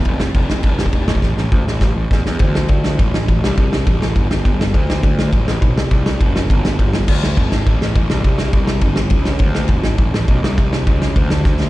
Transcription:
<<
  \new Staff \with { instrumentName = "Picked electric bass" } { \clef bass \time 4/4 \key a \dorian \tempo 4 = 206 f,,4 f,,8 f,,8 f,,4 f,,8 a,,8 | a,,8 a,,8 d,8 a,,8 a,,8 a,,8 e,8 e,8 | d,4 d,4 a,,8 a,,8 a,,8 c,8 | c,4 a,,4 g,,8 g,,8 g,,4 |
d,4 d,4 a,,8 a,,8 b,,8 c,8 | c,4 fis,,4 g,,8 g,,8 g,,4 | d,4 gis,,4 a,,8 a,,8 a,,8 c,8 | c,4 c,4 g,,8 g,,8 cis,4 |
d,4 gis,,4 a,,8 a,,8 b,,8 c,8 | c,4 cis,4 d,8 d,8 d,4 | }
  \new DrumStaff \with { instrumentName = "Drums" } \drummode { \time 4/4 <cymc bd>8 sn8 <cymc bd>8 sn8 <cymc bd>8 sn16 bd16 <cymc bd>8 sn16 bd16 | <bd sn>8 sn8 bd8 sn8 <bd sn>4 <bd sn>8 sn8 | <bd cymr>8 sn8 <bd cymr>8 sn8 <bd cymr>8 sn8 <bd cymr>8 sn8 | <bd cymr>8 sn8 <bd cymr>8 sn8 <bd cymr>8 sn8 <bd cymr>8 sn8 |
<bd cymr>8 sn8 <bd cymr>8 sn8 <bd cymr>8 sn8 <bd cymr>8 sn8 | <bd cymr>8 sn8 <bd cymr>8 sn8 <bd cymr>8 sn8 <bd cymr>8 sn8 | <cymc bd>8 sn8 <bd cymr>8 sn8 <bd cymr>8 sn8 <bd cymr>8 sn8 | <bd cymr>8 sn8 <bd cymr>8 sn8 <bd cymr>8 sn8 <bd cymr>8 sn8 |
<bd cymr>8 sn8 <bd cymr>8 sn8 <bd cymr>8 sn8 <bd cymr>8 sn8 | <bd cymr>8 sn8 <bd cymr>8 sn8 <bd cymr>8 sn8 <bd sn>8 sn8 | }
>>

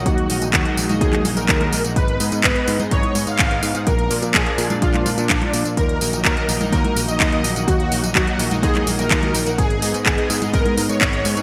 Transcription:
<<
  \new Staff \with { instrumentName = "Analog synth lead" } { \time 4/4 \key ees \minor \tempo 4 = 126 ges'8. r16 ges'8. r16 aes'8 r16 bes'4 r16 | ces''8. r16 ces''8. r16 des''8 r16 f''4 r16 | bes'8. r16 aes'8. r16 f'8 r16 d'4 r16 | bes'8. r16 bes'8. r16 bes'8 r16 ees''4 r16 |
ges'8. r16 ges'8. r16 aes'8 r16 bes'4 r16 | aes'8. r16 aes'8. r16 bes'8 r16 des''4 r16 | }
  \new Staff \with { instrumentName = "Analog polysynth" } { \time 4/4 \key ees \minor r8 <ees bes ees' ges' ees''>8. <ees bes ees' ges' ees''>8 <ees bes ees' ges' ees''>8. <ees bes ees' ges' ees''>8. <ees bes ees' ges' ees''>16 r16 <bes ees' ges' ges''>16 | r8 <aes, ces' ees' aes' ees''>8. <aes, ces' ees' aes' ees''>8 <aes, ces' ees' aes' ees''>8. <aes, ces' ees' aes' ees''>8. <aes, ces' ees' aes' ees''>16 r16 <ces' ees' aes' ges''>16 | r8 <bes, bes d' f' d''>8. <bes, bes d' f' d''>8 <bes, bes d' f' d''>8. <bes, bes d' f' d''>8 r16 <bes, bes d' f' d''>8 r16 | r8 <ees bes ees' ges' ees''>8. <ees bes ees' ges' ees''>8 <ees bes ees' ges' ees''>8. <ees bes ees' ges' ees''>8. <ees bes ees' ges' ees''>16 r16 <ees bes ees' ges' ges''>16 |
r8 <ees bes ees' ges' ees''>8. <ees bes ees' ges' ees''>8 <ees bes ees' ges' ees''>8. <ees bes ees' ges' ees''>8. <ees bes ees' ges' ees''>16 r16 <bes ees' ges' ges''>16 | r8 <aes, ces' ees' aes' ees''>8. <aes, ces' ees' aes' ees''>8 <aes, ces' ees' aes' ees''>8. <aes, ces' ees' aes' ees''>8. <aes, ces' ees' aes' ees''>16 r16 <ces' ees' aes' ges''>16 | }
  \new Staff \with { instrumentName = "Analog synth pad" } { \time 4/4 \key ees \minor << { ees'1~ | ees'1 | d'1 | ees'1~ |
ees'1~ | ees'1 | } \\ { <ges aes>1 | ces'1 | <f bes>1 | <ges bes>1~ |
<ges bes>1 | <aes ces'>1 | } >> }
  \new Staff \with { instrumentName = "Picked electric bass" } { \clef bass \time 4/4 \key ees \minor ees,8 bes,,16 bes,,16 ees,16 r16 bes,,16 bes,,16 ees,8 bes,,16 bes,,16 ees,8 bes,,16 bes,,16 | aes,,8 aes,16 aes,16 aes,,16 r16 aes,16 aes,16 aes,,16 r16 aes,16 aes,16 aes,,8 aes,16 aes,16 | bes,,8 bes,16 bes,16 bes,,16 r16 bes,16 bes,16 bes,,8 bes,16 bes,16 bes,,16 r16 bes,16 bes,16 | ees,8 bes,,16 bes,,16 ees,16 r16 bes,,16 bes,,16 ees,16 r16 bes,,16 bes,,16 ees,8 bes,,16 bes,,16 |
ees,8 bes,,16 bes,,16 ees,16 r16 bes,,16 bes,,16 ees,8 bes,,16 bes,,16 ees,8 bes,,16 bes,,16 | aes,,8 aes,16 aes,16 aes,,16 r16 aes,16 aes,16 aes,,16 r16 aes,16 aes,16 aes,,8 aes,16 aes,16 | }
  \new DrumStaff \with { instrumentName = "Drums" } \drummode { \time 4/4 <hh bd tamb>16 hh16 <hho tamb>16 <hh tamb>16 <hc hh bd>16 hh16 <hho tamb>16 <cgho hh tamb>16 <hh bd tamb>16 <hc cgho hh>16 <cgho hho tamb>16 <hh tamb>16 <hc hh bd tamb>16 <cgho hh>16 <hho tamb>16 <hh tamb>16 | <hh bd tamb>16 hh16 <hho tamb>16 <hh tamb>16 <hc hh bd>16 hh16 <hho tamb>16 <cgho hh tamb>16 <hh bd tamb>16 <cgho hh>16 <hho tamb>16 <hh tamb>16 <hc hh bd tamb>16 hh16 <hho tamb>16 <hh tamb>16 | <hh bd tamb>16 hh16 <hho tamb>16 <hh tamb>16 <hc hh bd tamb>16 hh16 <hho tamb>16 <cgho hh tamb>16 <hh bd tamb>16 <hc cgho hh>16 <cgho hho tamb>16 <hh tamb>16 <hc hh bd tamb>16 <cgho hh>16 <hho tamb>16 <hh tamb>16 | <hh bd tamb>16 hh16 <hho tamb>16 <hh tamb>16 <hc hh bd tamb>16 hh16 <hho tamb>16 <cgho hh tamb>16 <hh bd tamb>16 <cgho hh>16 <hho tamb>16 <hh tamb>16 <hc hh bd tamb>16 hh16 <hho tamb>16 <hh tamb>16 |
<hh bd tamb>16 hh16 <hho tamb>16 <hh tamb>16 <hc hh bd tamb>16 hh16 <hho tamb>16 <cgho hh tamb>16 <hh bd tamb>16 <hc cgho hh>16 <cgho hho tamb>16 <hh tamb>16 <hc hh bd tamb>16 <cgho hh>16 <hho tamb>16 <hh tamb>16 | <hh bd tamb>16 hh16 <hho tamb>16 <hh tamb>16 <hc hh bd tamb>16 hh16 <hho tamb>16 <cgho hh tamb>16 <hh bd tamb>16 <cgho hh>16 <hho tamb>16 <hh tamb>16 <hc hh bd tamb>16 hh16 <hho tamb>16 <hh tamb>16 | }
>>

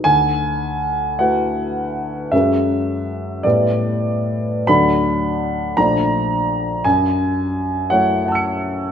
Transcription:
\new Staff \with { instrumentName = "Grand piano" } { \time 6/8 \key d \lydian \tempo 4. = 54 << { r2. | r2. | r2. | r2 <fis'' a'' e''' cis''''>4 | } \\ { <d, gis''>4. <a e' fis' b' fis''>4. | <fis, gis cis' fis' ais' e''>4. <a, g b e' b' d''>4. | <d, fis a d' d'' b''>4. <bes,, f a d' d'' bes''>4. | <fis, gis''>4. <fis a e' cis'' fis''>4. | } >> }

